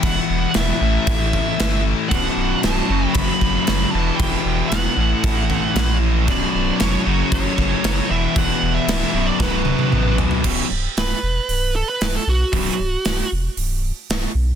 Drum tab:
CC |x---x---x---x---|x---x---x---x---|x---x---x---x---|x---x---x---x---|
HH |----------------|----------------|----------------|----------------|
SD |----o-------o---|----o-------o---|----o-------o---|----o-------o---|
T1 |----------------|----------------|----------------|----------------|
T2 |----------------|----------------|----------------|----------------|
FT |----------------|----------------|----------------|----------------|
BD |o-------o-o-----|o-------o-o-----|o-------o-o-----|o-------o-o-----|

CC |x---x-----------|x---------------|----------------|
HH |----------------|----o---o---o---|o---o---o---o---|
SD |----o---o-------|----o-------o---|----o-------o---|
T1 |----------oo----|----------------|----------------|
T2 |------------o---|----------------|----------------|
FT |--------------oo|----------------|----------------|
BD |o-------o-------|o---------------|o---------------|